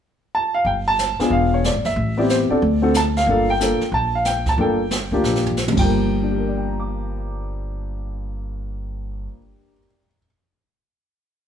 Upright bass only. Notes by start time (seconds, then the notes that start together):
0.65 G1
1.19 muted upright bass stroke
1.30 E1
1.74 G#1
1.85 F#1
1.96 A1
2.50 muted upright bass stroke
2.62 D2
3.26 G1
3.80 muted upright bass stroke
3.92 A#1
4.58 G1
5.11 D2
5.24 A#1
5.77 G1